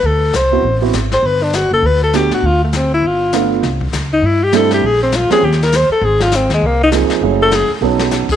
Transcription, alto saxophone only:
0.06 A4
0.36 C5
1.13 C5
1.27 B4
1.43 D4
1.55 F#4
1.73 A4
1.86 B4
2.03 A4
2.16 G4
2.34 F#4
2.46 F4
2.64 A3
2.76 C4
2.94 E4
3.07 F4
4.13 D#4
4.26 E4
4.43 G4
4.56 A4
4.74 G4
4.86 G#4
5.03 C4
5.16 F4
5.32 G#4
5.44 G4
5.63 A#4
5.76 C5
5.92 A4
6.05 G#4
6.23 F4
6.36 C4
6.54 G#3
6.66 A#3
6.83 D#4
7.42 A4
7.55 G#4
8.32 G#4

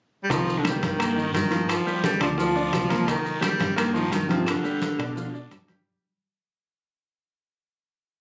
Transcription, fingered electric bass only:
0.30 C2
0.82 G2
1.34 G2
2.21 D2
2.73 C2
3.60 G2
4.12 G2
4.99 B2
5.52 G2

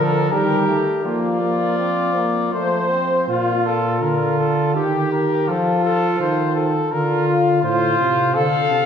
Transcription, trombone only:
Already playing: F3
0.31 G3
0.68 A3
1.05 A#3
1.42 A#3
1.79 C4
2.16 A#3
2.53 A3
2.91 C4

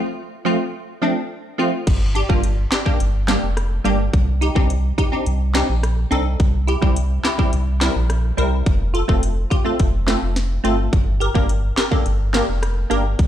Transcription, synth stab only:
0.45 F3 A3 C4 F4
1.02 F3 A3 C4 D4
1.58 F3 A3 C4 F4
2.15 D4 G4
2.29 G3 A#3 D4 F4
2.71 D4 G4
2.86 G3 A#3 D4 G4
3.28 G3 A#3 D4 G4
3.84 G3 A#3 D4 G4
4.41 D#4 G4
4.55 C4 D4 D#4 G4
4.98 D#4 G4
5.12 C4 D4 D#4 G4
5.54 C4 D4 D#4 G4
6.11 C4 D4 D#4 A4
6.67 E4 G4
6.82 G3 C4 E4 G4
7.24 E4 G4
7.38 G3 C4 E4 G4
7.81 G3 C4 E4 A#4
8.37 G3 C4 E4 A#4
8.94 F4 A4
9.08 A3 C4 F4 A4
9.50 F4 G4
9.65 A3 C4 F4 A4
10.07 A3 C4 F4 A4
10.64 A3 C4 F4 A4
11.20 G4 A#4
11.34 A#3 D4 G4 A#4
11.77 G4 A#4
11.91 A#3 D4 G4 A4
12.33 A#3 D4 G4 A#4
12.90 A#3 D4 G4 A#4

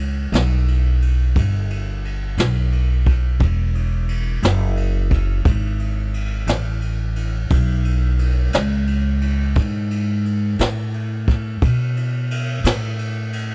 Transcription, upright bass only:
Already playing: C#2
0.32 B1
1.36 G1
2.38 B1
3.40 E1
4.43 F#1
5.45 G#1
6.47 A1
7.51 B1
8.54 C#2
9.56 G#2
10.59 A2
11.62 B2
12.64 A2

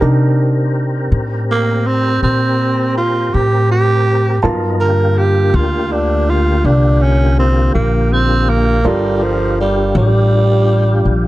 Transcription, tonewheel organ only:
0.01 C4 G4 A#4
4.43 F#3 B3 D#4 A#4
4.81 D3 A#3 F4 G4
8.84 D4 F4 G4

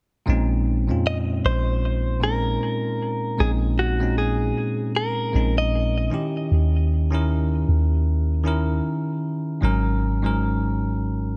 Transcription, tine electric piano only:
0.26 A#2 G#3 C4 C#4 D#4
0.87 A#2 G#3 C4 C#4 F4
2.20 A#2 G#3 C4 C#4 D#4
3.38 A#2 G#3 C4 C#4 D#4
3.99 A#2 G#3 C4 C#4 D#4
5.32 A#2 G#3 C4 C#4 D#4
6.10 D#3 C#4 E4 G4
7.11 D#3 C#4 E4 A#4
8.44 D#3 C#4 E4 A#4
9.61 G#2 F#3 C#4 A#4
10.22 G#2 F#3 C#4 A#4

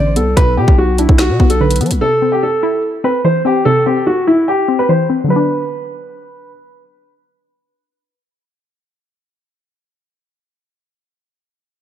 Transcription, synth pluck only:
Already playing: D3 B3 D4
0.16 B3
0.37 B2
0.58 B3
0.99 D4
1.40 B3
1.61 D3
1.81 B3
2.01 C3
2.22 C4
2.63 E4
3.04 C4
3.25 E3
3.45 C4
3.66 C3
3.87 C4
4.27 E4
4.68 C4
4.89 E3
5.10 C4
5.24 D3
5.28 F#3 B3
5.36 D4

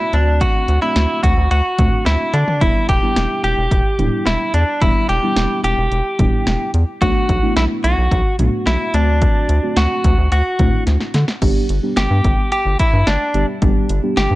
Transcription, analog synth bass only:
0.13 D2
0.68 D2
0.96 D2
1.24 D2
1.37 D2
1.51 D2
1.79 D2
2.06 D2
2.34 D3
2.61 E1
2.89 E1
3.16 E1
3.44 E1
3.57 E1
3.71 E1
3.99 E1
4.26 E1
4.54 E2
4.81 E1
5.09 E1
5.36 E1
5.64 E1
5.78 E1
5.91 E1
6.19 E1
6.46 E1
6.74 E2
7.02 B1
7.29 B1
7.57 B1
7.84 B1
7.98 B1
8.11 B1
8.39 B1
8.67 B1
8.94 D2
9.49 D2
9.77 D2
10.04 D2
10.18 D2
10.32 D2
10.59 D2
10.87 D2
11.14 D3
11.42 G1
11.69 G1
11.97 G1
12.11 G2
12.24 G1
12.66 G1
12.93 G2
13.07 G1
13.34 G1
13.62 G1
13.89 G1
14.17 G1
14.31 G2

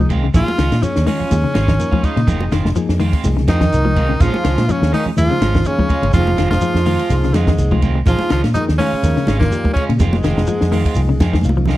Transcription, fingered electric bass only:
Already playing: C2
0.34 A#1
0.58 C#2
0.72 A#2
0.83 muted fingered electric bass stroke
0.97 D#2
1.21 muted fingered electric bass stroke
1.32 D#2
1.56 G#1
2.03 muted fingered electric bass stroke
2.17 A#2
2.28 F1
2.52 F1
2.65 F1
2.89 F2
3.24 C2
3.48 F2
3.73 C2
4.21 A#1
4.45 C#2
4.58 A#2
4.69 muted fingered electric bass stroke
4.82 D#2
5.06 muted fingered electric bass stroke
5.17 D#2
5.41 G#1
5.90 muted fingered electric bass stroke
6.02 G1
6.14 F1
6.38 F1
6.51 F1
6.74 F2
7.10 C2
7.34 F2
7.58 C2
8.07 A#1
8.31 C#2
8.44 A#2
8.55 muted fingered electric bass stroke
8.69 D#2
8.93 muted fingered electric bass stroke
9.03 D#2
9.27 G#1
9.76 muted fingered electric bass stroke
9.89 A#2
10.00 F1
10.24 F1
10.37 F1
10.62 F2
10.96 C2
11.21 F2
11.44 C2

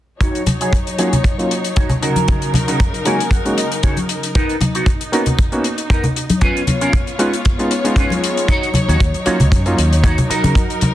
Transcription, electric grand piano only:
0.98 F#3 A#3 C#4 D#4 F4
1.38 F#3 A#3 C#4 D#4 F4
3.05 G#3 A#3 C#4 D#4 F#4
3.45 G#3 A#3 C#4 D#4 F#4
5.12 A#3 B3 C#4 D#4 F#4
5.52 A#3 B3 C#4 D#4 F#4
7.19 G#3 B3 C#4 D#4 F4
7.59 G#3 B3 C#4 D#4 F4
7.84 G#3 B3 C#4 D#4 F4
9.26 F#3 A#3 C#4 D#4 F4
9.66 F#3 A#3 C#4 D#4 F4

